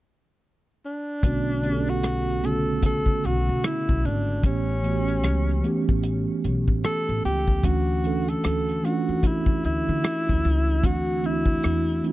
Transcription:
0.85 1.91 D4 medium
1.23 3.04 B1 medium
1.23 1.58 D3 medium
1.23 1.59 A3 medium
1.23 1.59 B3 medium
1.23 1.60 C#4 medium
1.23 1.60 F#4 medium
1.23 kick loud
1.23 closed hi-hat medium
1.62 2.34 D3 medium
1.62 2.34 A3 medium
1.62 2.35 B3 medium
1.62 2.35 C#4 medium
1.62 1.72 G4 soft
1.62 closed hi-hat medium
1.73 2.39 A4 medium
1.88 2.47 F#4 medium
1.88 closed hi-hat soft
2.03 cross-stick medium
2.03 closed hi-hat medium
2.29 cross-stick soft
2.42 2.51 C#3 medium
2.42 3.85 A3 medium
2.42 3.85 B3 medium
2.42 3.86 C#4 medium
2.42 3.86 F#4 medium
2.42 2.84 A4 medium
2.42 cross-stick soft
2.42 closed hi-hat medium
2.49 3.88 D3 medium
2.83 3.27 A4 medium
2.83 kick medium
2.83 closed hi-hat medium
3.06 kick medium
3.24 3.45 B1 medium
3.24 3.67 F#4 medium
3.24 closed hi-hat medium
3.49 3.62 B2 medium
3.64 4.07 E4 medium
3.64 cross-stick loud
3.64 closed hi-hat medium
3.89 4.03 B1 medium
3.89 kick medium
4.05 4.40 G#1 medium
4.05 4.44 D4 medium
4.05 closed hi-hat medium
4.42 5.25 A1 medium
4.42 4.78 E3 medium
4.42 4.79 A3 medium
4.42 4.79 B3 soft
4.42 4.80 C#4 medium
4.42 6.00 C#4 medium
4.42 4.80 G4 medium
4.42 kick loud
4.42 closed hi-hat medium
4.83 5.54 E3 medium
4.83 5.55 A3 medium
4.83 5.55 B3 medium
4.83 5.56 C#4 medium
4.83 closed hi-hat medium
4.87 4.93 F#4 medium
4.93 5.59 G4 medium
5.08 closed hi-hat soft
5.24 5.59 C#2 medium
5.24 cross-stick medium
5.24 closed hi-hat medium
5.49 cross-stick soft
5.62 7.04 E3 medium
5.62 7.05 A3 medium
5.62 7.05 B3 medium
5.62 7.06 C#4 medium
5.62 closed hi-hat soft
5.67 7.07 G4 medium
5.89 6.24 A1 medium
5.89 kick medium
6.03 closed hi-hat medium
6.44 6.65 B1 medium
6.44 closed hi-hat medium
6.68 6.82 A2 medium
6.68 kick medium
6.84 7.22 A4 loud
6.84 cross-stick loud
6.84 closed hi-hat medium
7.09 7.22 A1 medium
7.25 7.60 C#2 medium
7.25 7.67 G4 medium
7.25 closed hi-hat medium
7.48 kick medium
7.63 8.35 D2 medium
7.63 7.99 E3 medium
7.63 7.99 A3 medium
7.63 8.00 C#4 medium
7.63 8.00 D4 medium
7.63 8.30 F#4 medium
7.63 8.00 F#4 medium
7.63 kick medium
7.63 closed hi-hat medium
8.03 8.74 E3 medium
8.03 8.75 A3 medium
8.03 8.75 C#4 medium
8.03 8.76 D4 medium
8.03 8.76 A4 medium
8.03 closed hi-hat medium
8.28 8.87 A4 medium
8.28 closed hi-hat medium
8.44 8.80 D2 medium
8.44 cross-stick medium
8.44 closed hi-hat medium
8.69 cross-stick soft
8.69 closed hi-hat soft
8.83 10.25 E3 medium
8.83 10.25 A3 medium
8.83 10.25 C#4 medium
8.83 10.26 D4 medium
8.83 9.28 F#4 medium
8.83 cross-stick soft
8.83 closed hi-hat medium
8.87 8.93 F4 medium
8.93 10.30 F#4 medium
9.09 9.44 E2 medium
9.23 9.65 E4 medium
9.23 kick medium
9.23 closed hi-hat medium
9.46 kick medium
9.64 9.85 D2 medium
9.64 10.87 E4 medium
9.64 closed hi-hat medium
9.89 10.02 D3 medium
10.04 cross-stick loud
10.04 closed hi-hat medium
10.29 10.43 D2 medium
10.29 kick medium
10.45 10.80 C#2 medium
10.45 closed hi-hat medium
10.83 11.55 D2 medium
10.83 11.18 E3 medium
10.83 11.19 A3 medium
10.83 11.19 C4 medium
10.83 11.20 D4 medium
10.83 11.27 F#4 loud
10.83 11.20 F#4 medium
10.83 kick loud
10.83 closed hi-hat medium
11.22 11.94 E3 medium
11.22 11.94 A3 medium
11.22 11.95 C4 medium
11.22 11.95 D4 medium
11.22 12.12 E4 medium
11.22 11.33 E4 medium
11.22 closed hi-hat medium
11.33 11.99 F#4 medium
11.46 kick medium
11.63 12.00 E2 medium
11.63 cross-stick medium
11.63 closed hi-hat medium
11.88 closed hi-hat soft
12.03 12.12 E3 medium
12.03 12.12 A3 medium
12.03 12.12 C4 medium
12.03 12.12 D4 medium
12.03 12.12 F4 medium
12.03 closed hi-hat soft

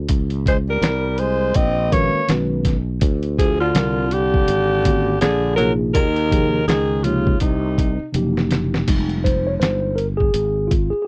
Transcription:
0.08 0.79 C#2 medium
0.08 kick loud
0.08 closed hi-hat medium
0.30 closed hi-hat soft
0.46 0.57 G#3 medium
0.46 0.58 C5 medium
0.46 kick medium
0.46 closed hi-hat medium
0.69 1.21 G3 medium
0.69 1.21 A#4 medium
0.82 1.52 C2 medium
0.82 snare loud
0.82 closed hi-hat medium
1.18 1.57 G#3 medium
1.18 1.58 C5 medium
1.18 closed hi-hat medium
1.54 2.12 A#1 medium
1.54 1.94 C4 medium
1.54 1.94 D#5 loud
1.54 kick medium
1.54 closed hi-hat medium
1.90 2.19 D#3 medium
1.90 2.20 G#3 medium
1.90 2.29 A#3 medium
1.90 2.20 C#4 medium
1.90 2.20 F#4 medium
1.90 2.21 B4 medium
1.90 2.29 C#5 medium
1.90 kick medium
1.90 closed hi-hat medium
2.14 muted fretless electric bass stroke soft
2.27 2.99 B1 medium
2.27 2.74 D#3 medium
2.27 2.74 G#3 medium
2.27 2.74 C#4 medium
2.27 2.75 F#4 medium
2.27 2.75 B4 medium
2.27 snare medium
2.27 closed hi-hat medium
2.65 kick medium
2.65 snare soft
2.65 closed hi-hat medium
3.01 3.72 D2 loud
3.01 kick medium
3.01 closed hi-hat medium
3.23 closed hi-hat soft
3.38 3.59 F3 medium
3.38 3.59 G#4 medium
3.38 kick medium
3.38 closed hi-hat medium
3.60 4.12 D3 medium
3.60 4.15 F4 medium
3.74 4.45 C2 medium
3.74 4.03 D3 medium
3.74 4.03 G3 medium
3.74 4.03 C4 medium
3.74 4.04 F4 medium
3.74 4.04 A#4 medium
3.74 snare loud
3.74 closed hi-hat medium
4.11 5.20 D3 medium
4.11 5.21 G4 loud
4.11 closed hi-hat medium
4.34 kick medium
4.48 5.18 G#1 medium
4.48 closed hi-hat medium
4.84 5.12 D3 medium
4.84 5.13 G#3 medium
4.84 5.13 A#3 medium
4.84 5.13 C#4 medium
4.84 5.14 F#4 medium
4.84 kick medium
4.84 closed hi-hat medium
5.21 5.92 A#1 medium
5.21 5.56 D3 medium
5.21 5.56 G#4 medium
5.21 snare loud
5.21 closed hi-hat medium
5.56 6.03 C3 medium
5.56 5.73 F#3 medium
5.56 6.04 A#3 medium
5.56 6.05 D#4 medium
5.56 6.04 F4 medium
5.56 5.72 A#4 loud
5.56 closed hi-hat medium
5.61 6.05 G#4 medium
5.94 6.65 D#2 loud
5.94 6.64 D#3 medium
5.94 6.64 A#4 loud
5.94 kick loud
5.94 closed hi-hat medium
6.16 closed hi-hat soft
6.29 6.58 C3 medium
6.29 6.59 F3 medium
6.29 6.59 A#3 medium
6.29 6.60 D#4 medium
6.29 6.60 G#4 medium
6.29 kick medium
6.29 closed hi-hat medium
6.67 7.38 C#2 medium
6.67 7.06 D#3 medium
6.67 7.05 G#4 medium
6.67 snare loud
6.67 closed hi-hat medium
7.04 7.32 C3 medium
7.04 7.41 C#3 medium
7.04 7.32 F3 medium
7.04 7.33 A#3 medium
7.04 7.33 D#4 medium
7.04 7.40 F4 medium
7.04 7.34 G4 medium
7.04 closed hi-hat medium
7.27 kick medium
7.40 7.97 C2 medium
7.40 8.11 C3 medium
7.40 8.10 D#4 medium
7.40 kick medium
7.40 closed hi-hat medium
7.78 kick medium
7.78 closed hi-hat medium
7.99 muted fretless electric bass stroke soft
8.13 8.84 F#1 medium
8.13 8.87 C3 medium
8.13 8.87 F3 medium
8.13 8.88 A#3 medium
8.13 8.87 D#4 medium
8.13 8.88 G4 medium
8.13 closed hi-hat medium
8.37 snare medium
8.51 snare medium
8.51 closed hi-hat medium
8.74 snare medium
8.88 9.58 F1 loud
8.88 9.94 G3 medium
8.88 9.94 G#3 soft
8.88 9.94 D#4 medium
8.88 kick loud
8.88 closed hi-hat medium
8.88 crash medium
9.09 closed hi-hat soft
9.24 9.47 C5 loud
9.24 kick medium
9.24 closed hi-hat medium
9.47 9.53 C#5 medium
9.60 10.30 G1 medium
9.60 9.98 C5 medium
9.60 snare loud
9.60 closed hi-hat medium
9.96 10.06 A#4 medium
9.96 closed hi-hat medium
10.17 10.71 G#4 loud
10.17 kick medium
10.34 10.90 G#1 medium
10.34 closed hi-hat medium
10.68 10.92 F4 medium
10.68 kick loud
10.68 closed hi-hat medium
10.90 11.01 G#4 medium
10.90 muted fretless electric bass stroke soft
11.02 11.07 G#4 medium

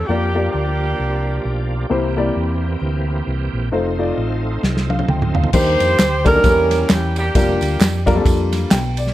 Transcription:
0.06 0.47 F2 loud
0.06 1.87 F3 medium
0.06 1.87 A#3 medium
0.06 0.27 A#3 medium
0.06 0.53 A#3 medium
0.06 1.87 D4 medium
0.06 0.53 D4 medium
0.06 0.27 F4 medium
0.06 0.15 F#4 medium
0.06 0.50 G4 medium
0.06 0.27 G4 medium
0.06 0.27 D5 medium
0.14 1.89 G4 medium
0.35 0.94 A#3 medium
0.35 0.94 F4 medium
0.35 0.94 G4 medium
0.35 0.94 D5 medium
0.52 0.93 D2 medium
0.52 1.68 A#3 medium
0.52 1.68 D4 medium
0.52 1.66 G4 medium
0.99 1.38 C2 medium
1.45 1.84 B1 medium
1.90 2.29 C2 medium
1.90 2.59 C3 medium
1.90 3.69 E3 medium
1.90 2.08 A#3 medium
1.90 3.69 A#3 medium
1.90 3.69 C4 medium
1.90 2.08 E4 medium
1.90 2.08 G4 medium
1.90 3.69 G4 medium
1.90 2.09 C5 medium
2.17 2.76 A#3 medium
2.17 2.76 E4 medium
2.17 2.76 G4 medium
2.17 2.76 D5 medium
2.36 2.75 E2 medium
2.81 3.20 D2 medium
3.27 3.50 C2 medium
3.53 3.70 A#1 medium
3.72 4.11 F1 medium
3.72 3.90 A3 medium
3.72 5.51 A3 medium
3.72 5.51 C4 medium
3.72 3.90 D#4 medium
3.72 5.51 D#4 medium
3.72 3.91 F4 medium
3.72 5.51 F4 medium
3.72 3.91 C5 medium
3.98 4.58 A3 medium
3.98 4.58 D#4 medium
3.98 4.58 F4 medium
3.98 4.58 D5 medium
4.18 4.56 A1 medium
4.63 5.02 C2 medium
4.63 snare medium
4.77 snare soft
4.90 5.08 F5 medium
4.90 high tom medium
4.99 high tom medium
5.08 5.47 D2 medium
5.08 5.34 G5 medium
5.08 mid tom medium
5.22 mid tom medium
5.35 5.78 F5 medium
5.35 floor tom medium
5.44 floor tom medium
5.53 5.76 D#2 loud
5.53 6.22 D#3 medium
5.53 6.00 G3 medium
5.53 6.00 A#3 medium
5.53 6.00 D4 medium
5.53 6.00 D#4 medium
5.53 6.25 G4 medium
5.53 6.01 A#4 medium
5.53 6.22 C5 loud
5.53 kick loud
5.53 crash medium
5.53 tambourine medium
5.80 5.96 F2 medium
5.80 ride medium
5.80 tambourine medium
5.99 6.38 D2 medium
5.99 snare medium
5.99 clap loud
5.99 ride medium
5.99 tambourine loud
6.24 6.32 G3 medium
6.24 6.32 A#3 medium
6.24 7.12 C#4 medium
6.24 6.32 D4 medium
6.24 6.32 D#4 medium
6.24 6.91 G4 medium
6.24 6.32 A4 medium
6.24 6.87 A#4 loud
6.24 kick loud
6.24 ride medium
6.24 tambourine medium
6.34 6.43 G3 medium
6.34 6.43 A#3 medium
6.34 6.45 D4 medium
6.34 6.45 D#4 medium
6.34 6.45 A#4 medium
6.44 6.83 E2 loud
6.44 7.12 E3 medium
6.44 7.20 G3 medium
6.44 7.20 A#3 medium
6.44 7.20 C#4 medium
6.44 7.20 E4 medium
6.44 6.51 A4 medium
6.44 kick loud
6.44 ride medium
6.44 tambourine medium
6.51 7.23 A#4 medium
6.71 snare soft
6.71 ride medium
6.71 tambourine medium
6.90 7.29 E2 medium
6.90 7.18 G4 medium
6.90 snare loud
6.90 clap loud
6.90 ride medium
6.90 tambourine medium
7.16 8.03 A#3 medium
7.16 8.03 D4 medium
7.16 8.04 G4 medium
7.16 ride medium
7.16 tambourine medium
7.35 7.58 F1 loud
7.35 7.81 G3 medium
7.35 7.81 A#3 medium
7.35 7.81 D4 medium
7.35 7.81 F4 medium
7.35 7.81 A#4 medium
7.35 kick loud
7.35 ride medium
7.35 tambourine medium
7.61 7.77 D2 loud
7.61 ride medium
7.61 tambourine medium
7.80 8.19 F2 medium
7.80 snare loud
7.80 clap loud
7.80 ride medium
7.80 tambourine loud
8.06 8.13 G3 loud
8.06 8.13 A#3 medium
8.06 8.13 D4 medium
8.06 8.13 F4 medium
8.06 8.13 A#4 loud
8.06 kick medium
8.06 ride medium
8.06 tambourine medium
8.15 8.75 G3 loud
8.15 8.76 A#3 medium
8.15 8.20 C4 medium
8.15 8.76 F4 medium
8.15 8.76 A4 loud
8.21 8.78 D4 medium
8.26 8.64 F2 loud
8.26 kick loud
8.26 ride medium
8.26 tambourine medium
8.53 snare soft
8.53 ride medium
8.53 tambourine medium
8.71 9.09 B1 loud
8.71 8.96 G5 medium
8.71 snare loud
8.71 clap loud
8.71 ride medium
8.71 tambourine loud
8.97 9.14 D5 medium
8.97 ride medium
8.97 tambourine soft
9.07 snare soft

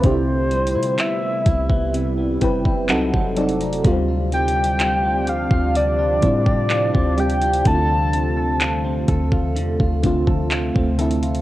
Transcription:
0.00 0.77 C2 loud
0.00 1.33 C3 medium
0.00 1.93 C3 medium
0.00 11.42 C3 medium
0.00 2.86 G3 medium
0.00 0.98 C4 medium
0.00 1.34 C4 medium
0.00 2.86 E4 medium
0.00 0.13 F4 medium
0.00 0.13 A4 medium
0.00 kick loud
0.00 closed hi-hat medium
0.05 0.11 D4 medium
0.05 1.35 G4 medium
0.05 1.01 C5 loud
0.11 1.38 E4 medium
0.51 1.21 G3 medium
0.51 closed hi-hat soft
0.67 closed hi-hat medium
0.75 0.98 C3 loud
0.75 1.45 E4 medium
0.83 closed hi-hat medium
0.99 1.69 B3 medium
0.99 1.94 E5 medium
0.99 clap loud
0.99 closed hi-hat medium
1.22 2.40 G3 medium
1.46 2.38 C2 loud
1.46 2.64 E4 medium
1.46 kick loud
1.46 closed hi-hat medium
1.70 2.17 B3 medium
1.70 kick loud
1.94 2.99 C3 medium
1.94 closed hi-hat medium
2.18 2.99 B3 medium
2.41 2.91 F#1 loud
2.41 2.89 C3 medium
2.41 2.89 G3 medium
2.41 2.88 C4 medium
2.41 2.90 E4 medium
2.41 2.91 B4 loud
2.41 2.86 G5 medium
2.41 kick medium
2.41 closed hi-hat medium
2.65 2.99 E4 medium
2.65 kick loud
2.88 3.12 C2 loud
2.88 3.27 F#3 medium
2.88 3.94 F#3 medium
2.88 3.28 C4 medium
2.88 3.28 D#4 medium
2.88 3.29 A4 loud
2.88 3.34 F#5 medium
2.88 clap loud
2.88 closed hi-hat medium
3.13 3.63 F#1 loud
3.13 4.32 C4 medium
3.13 kick medium
3.36 3.69 F#3 medium
3.36 3.70 C4 medium
3.36 3.70 D#4 medium
3.36 3.94 A4 medium
3.36 3.71 A4 medium
3.36 3.82 D5 medium
3.36 closed hi-hat soft
3.36 open hi-hat medium
3.49 closed hi-hat soft
3.61 3.84 F1 loud
3.61 3.94 D#4 medium
3.61 closed hi-hat medium
3.73 closed hi-hat medium
3.84 5.47 D2 loud
3.84 5.75 D3 medium
3.84 11.42 F3 medium
3.84 5.14 G3 medium
3.84 7.62 G3 medium
3.84 3.91 B3 medium
3.84 9.52 D4 medium
3.84 5.16 F4 loud
3.84 kick loud
3.84 closed hi-hat medium
3.92 5.18 C4 medium
4.08 4.79 F4 medium
4.32 5.03 C4 medium
4.32 5.30 G5 loud
4.32 closed hi-hat soft
4.48 closed hi-hat medium
4.56 5.26 G4 medium
4.64 closed hi-hat medium
4.80 5.51 F4 medium
4.80 clap loud
4.80 closed hi-hat medium
5.04 6.22 C4 medium
5.27 6.45 G4 medium
5.27 5.76 F5 medium
5.27 closed hi-hat medium
5.51 6.20 D2 medium
5.51 5.98 F4 medium
5.51 kick loud
5.75 7.65 D3 medium
5.75 7.21 D5 loud
5.75 closed hi-hat medium
5.99 6.70 F4 medium
6.22 6.91 A2 loud
6.22 6.87 G3 medium
6.22 6.93 C4 medium
6.22 6.88 C4 medium
6.22 6.89 E4 medium
6.22 kick medium
6.22 closed hi-hat medium
6.46 7.16 G4 medium
6.46 kick loud
6.70 7.41 F4 medium
6.70 clap loud
6.70 closed hi-hat medium
6.94 7.63 D2 loud
6.94 8.13 C4 medium
6.94 kick medium
7.17 7.50 G3 medium
7.17 7.51 C4 medium
7.17 7.75 G4 medium
7.17 7.52 G4 medium
7.17 7.66 G5 loud
7.17 closed hi-hat soft
7.30 closed hi-hat medium
7.42 7.89 F4 medium
7.42 closed hi-hat medium
7.53 closed hi-hat medium
7.65 9.04 D2 loud
7.65 8.95 D3 medium
7.65 9.55 D3 medium
7.65 11.42 A3 medium
7.65 8.96 A3 medium
7.65 8.96 C4 medium
7.65 7.73 E4 medium
7.65 9.05 A5 loud
7.65 kick loud
7.65 closed hi-hat medium
7.75 9.00 F4 medium
7.89 8.60 F4 medium
8.13 8.84 C4 medium
8.13 closed hi-hat medium
8.37 9.08 A4 medium
8.61 9.32 F4 medium
8.61 clap loud
8.61 closed hi-hat medium
8.85 10.03 C4 medium
9.08 9.58 D2 loud
9.08 10.27 A4 medium
9.08 kick medium
9.08 closed hi-hat medium
9.32 9.79 F4 medium
9.32 kick loud
9.56 9.79 E2 loud
9.56 11.42 D3 medium
9.56 11.42 E5 medium
9.56 closed hi-hat medium
9.80 10.71 D2 loud
9.80 10.51 F4 medium
9.80 kick medium
10.03 10.68 D3 medium
10.03 10.69 A3 medium
10.03 10.74 C4 medium
10.03 10.69 C4 medium
10.03 10.70 F4 loud
10.03 kick medium
10.03 closed hi-hat medium
10.27 10.98 A4 medium
10.27 kick loud
10.51 11.22 F4 medium
10.51 clap loud
10.51 closed hi-hat medium
10.75 11.42 D2 loud
10.75 11.42 C4 medium
10.75 kick medium
10.98 11.31 D3 medium
10.98 11.31 A3 medium
10.98 11.32 C4 medium
10.98 11.33 E4 medium
10.98 11.42 A4 medium
10.98 closed hi-hat medium
10.98 open hi-hat medium
11.11 closed hi-hat medium
11.23 11.42 F4 medium
11.23 closed hi-hat medium
11.35 closed hi-hat medium

